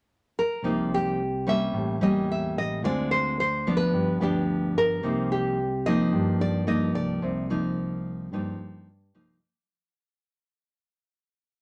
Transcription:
0.39 0.89 A#4 medium
0.62 1.69 C2 medium
0.62 1.71 C3 soft
0.62 1.18 F3 medium
0.62 1.19 A#3 medium
0.62 1.19 D#4 medium
0.94 1.49 G4 medium
1.47 1.97 G3 medium
1.47 1.97 A#3 medium
1.47 1.97 C#4 medium
1.47 2.03 E5 loud
1.73 1.99 A1 medium
1.73 2.81 A2 soft
2.00 2.52 E2 medium
2.00 2.79 G3 medium
2.00 2.79 A#3 medium
2.00 2.79 C#4 medium
2.00 2.30 D#5 medium
2.32 2.58 E5 medium
2.56 2.81 A1 medium
2.56 2.85 D#5 medium
2.83 3.89 D2 medium
2.83 3.91 D3 medium
2.83 3.38 G#3 soft
2.83 3.39 C4 medium
2.83 3.39 F4 medium
2.83 3.11 D5 medium
3.11 3.39 C5 medium
3.40 3.76 C5 medium
3.67 4.17 F3 medium
3.67 4.17 B3 medium
3.67 4.17 D4 medium
3.77 4.23 B4 medium
3.92 4.18 G1 medium
3.92 5.00 G2 soft
4.20 4.71 D2 medium
4.20 4.99 F3 medium
4.20 4.99 B3 medium
4.20 4.99 D4 medium
4.20 4.73 G4 medium
4.75 5.01 G1 medium
4.75 5.31 A#4 medium
5.02 6.08 C2 medium
5.02 6.10 C3 medium
5.02 5.57 F3 soft
5.02 5.58 A#3 medium
5.02 5.58 D#4 medium
5.32 5.87 G4 medium
5.86 6.64 F3 medium
5.86 6.64 A#3 medium
5.86 6.64 D#4 medium
5.86 6.37 D#5 medium
6.11 6.37 G2 medium
6.11 7.19 G2 soft
6.39 6.90 G2 medium
6.39 6.66 D5 medium
6.67 7.45 F3 soft
6.67 7.45 A#3 medium
6.67 7.45 D#4 medium
6.67 6.95 D#5 medium
6.95 7.20 C2 medium
6.95 8.83 D5 medium
7.22 8.28 C2 medium
7.22 8.29 C3 medium
7.50 8.28 F3 medium
7.50 8.28 A#3 medium
7.50 8.28 D#4 medium
8.32 8.57 G2 medium
8.32 9.39 G2 soft
8.32 8.87 F3 medium
8.32 8.87 A#3 soft
8.32 8.87 D#4 soft
8.59 9.10 G2 medium
9.14 9.39 C2 medium
9.14 9.37 F3 medium
9.14 9.38 A#3 medium
9.14 9.38 D#4 medium

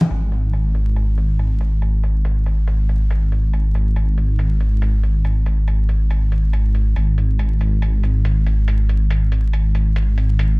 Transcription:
0.01 high conga medium
0.11 6.94 G#1 medium
0.11 closed hi-hat medium
0.32 closed hi-hat soft
0.53 closed hi-hat medium
0.75 closed hi-hat medium
0.96 closed hi-hat medium
1.18 closed hi-hat soft
1.39 closed hi-hat medium
1.61 closed hi-hat soft
1.82 closed hi-hat medium
2.04 closed hi-hat soft
2.25 closed hi-hat medium
2.46 closed hi-hat soft
2.68 closed hi-hat medium
2.89 closed hi-hat soft
3.11 closed hi-hat medium
3.32 closed hi-hat soft
3.53 closed hi-hat medium
3.75 closed hi-hat soft
3.96 closed hi-hat medium
4.18 closed hi-hat soft
4.39 closed hi-hat medium
4.61 closed hi-hat soft
4.82 closed hi-hat medium
5.03 closed hi-hat soft
5.25 closed hi-hat medium
5.46 closed hi-hat soft
5.68 closed hi-hat medium
5.89 closed hi-hat soft
6.11 closed hi-hat medium
6.32 closed hi-hat soft
6.53 closed hi-hat medium
6.75 closed hi-hat soft
6.96 10.60 G#1 medium
6.96 closed hi-hat medium
7.18 closed hi-hat soft
7.39 closed hi-hat medium
7.61 closed hi-hat soft
7.82 closed hi-hat medium
8.04 closed hi-hat soft
8.25 closed hi-hat medium
8.46 closed hi-hat soft
8.68 closed hi-hat medium
8.89 closed hi-hat medium
9.10 closed hi-hat medium
9.32 closed hi-hat medium
9.53 closed hi-hat medium
9.75 closed hi-hat soft
9.96 closed hi-hat medium
10.18 closed hi-hat soft
10.39 closed hi-hat medium

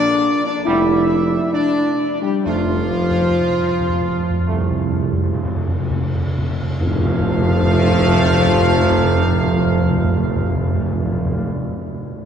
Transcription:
0.00 0.41 D4 loud
0.00 0.41 D5 loud
0.45 0.65 D4 loud
0.45 0.65 D5 loud
0.65 1.38 F1 loud
0.65 0.98 D3 loud
0.65 0.98 G3 loud
0.65 1.48 E4 loud
0.65 1.53 E5 medium
1.53 2.18 D4 loud
1.53 2.18 D5 loud
2.22 2.44 G3 medium
2.22 2.33 G4 medium
2.45 3.28 F1 loud
2.45 2.53 F2 medium
2.45 2.83 C3 medium
2.45 5.59 F3 loud
2.45 2.83 A3 medium
2.45 5.55 F4 loud
2.55 2.62 F2 soft
2.64 2.72 F2 medium
2.73 2.81 F2 medium
3.01 3.09 F2 medium
3.11 3.19 F2 medium
3.30 3.38 F2 medium
3.49 3.58 F2 medium
3.60 3.68 F2 medium
3.80 3.88 F2 medium
3.89 3.98 F2 medium
4.00 4.08 F2 medium
4.09 4.18 F2 medium
4.20 4.29 F2 medium
4.30 4.39 F2 medium
4.40 4.49 F2 medium
4.47 5.41 C2 loud
4.47 4.59 F2 medium
4.47 4.91 C3 medium
4.47 4.91 A3 medium
4.60 4.70 F2 loud
4.71 4.80 F2 loud
4.81 4.90 F2 medium
4.92 5.01 F2 medium
5.02 5.12 F2 loud
5.13 5.22 F2 medium
5.23 5.33 F2 loud
5.34 5.44 F2 loud
5.45 5.55 F2 loud
5.56 5.66 F2 loud
5.67 5.78 F2 loud
5.79 5.89 F2 loud
5.90 6.01 F2 loud
6.02 6.13 F2 loud
6.14 6.25 F2 loud
6.26 6.37 F2 loud
6.38 6.49 F2 loud
6.50 6.61 F2 loud
6.62 6.73 F2 loud
6.80 11.51 F1 loud
6.80 6.86 F2 loud
6.80 11.50 C3 loud
6.80 11.50 F3 loud
6.80 11.50 A3 loud
6.80 11.51 F5 loud
6.80 tam-tam medium
6.86 6.93 F2 medium
6.93 6.99 F2 loud
6.99 7.06 F2 loud
7.06 7.12 F2 loud
7.12 7.18 F2 medium
7.18 7.25 F2 loud
7.25 7.31 F2 medium
7.31 7.37 F2 loud
7.38 7.43 F2 loud
7.43 7.50 F2 loud
7.50 7.56 F2 loud
7.56 7.62 F2 loud
7.62 7.68 F2 loud
7.68 7.75 F2 loud
7.75 7.81 F2 loud
7.81 7.88 F2 loud
7.88 7.94 F2 loud
7.94 8.00 F2 loud
8.00 8.07 F2 loud
8.07 8.13 F2 loud
8.13 8.19 F2 loud
8.20 8.26 F2 loud
8.26 8.32 F2 loud
8.32 8.38 F2 loud
8.39 8.45 F2 loud
8.45 8.52 F2 loud
8.52 8.58 F2 loud
8.58 8.65 F2 loud
8.65 8.71 F2 medium
8.71 8.77 F2 medium
8.77 8.83 F2 loud
8.83 8.89 F2 loud
8.90 8.96 F2 loud
8.96 9.03 F2 loud
9.03 9.09 F2 loud
9.09 9.15 F2 loud
9.15 9.21 F2 medium
9.21 9.28 F2 loud
9.28 9.34 F2 loud
9.34 9.40 F2 loud
9.41 9.47 F2 loud
9.47 9.53 F2 loud
9.53 9.59 F2 loud
9.59 9.65 F2 loud
9.66 9.72 F2 loud
9.72 9.79 F2 loud
9.79 9.85 F2 loud
9.85 9.91 F2 loud
9.91 9.97 F2 loud
9.98 10.04 F2 loud
10.04 10.10 F2 loud
10.11 10.17 F2 loud
10.17 10.23 F2 loud
10.23 10.29 F2 loud
10.29 10.36 F2 loud
10.36 10.42 F2 loud
10.42 10.49 F2 loud
10.49 10.55 F2 loud
10.55 10.61 F2 loud
10.61 10.67 F2 loud
10.67 10.74 F2 loud
10.74 10.80 F2 loud
10.80 10.86 F2 loud
10.86 10.93 F2 loud
10.93 10.99 F2 medium
10.99 11.05 F2 loud
11.05 11.12 F2 loud
11.12 11.18 F2 loud
11.18 11.25 F2 loud
11.25 11.31 F2 loud
11.31 11.37 F2 loud
11.37 11.43 F2 loud
11.43 11.50 F2 medium

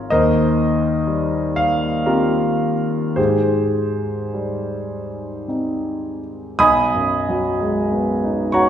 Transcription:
0.00 0.10 F3 soft
0.00 0.10 C4 soft
0.00 0.11 F4 soft
0.00 0.10 F5 soft
0.00 0.11 A#5 soft
0.00 0.11 F6 soft
0.10 3.15 D#2 medium
0.10 1.55 A#4 medium
0.10 1.54 C5 medium
0.10 1.58 D#5 medium
1.07 2.73 G3 soft
1.56 2.08 F5 medium
2.06 3.13 C4 soft
2.06 3.13 F4 medium
2.06 3.12 G4 soft
2.06 3.16 A#4 medium
3.16 6.57 G#2 soft
3.16 5.45 G4 soft
3.16 5.45 G#4 soft
3.16 5.48 C5 medium
4.34 6.18 G3 soft
5.48 6.57 C4 soft
5.48 6.57 D#4 soft
6.59 8.69 B1 soft
6.59 8.51 D#5 medium
6.59 8.51 G#5 medium
6.59 8.51 B5 medium
6.59 8.54 D#6 medium
6.95 7.48 F#2 soft
7.29 7.80 F#3 soft
7.60 8.11 G#3 soft
7.91 8.42 B3 soft
8.24 8.69 D#4 soft
8.52 8.69 F#4 soft
8.52 8.69 C#5 medium
8.52 8.69 F#5 medium
8.52 8.69 A#5 medium
8.52 8.69 C#6 medium

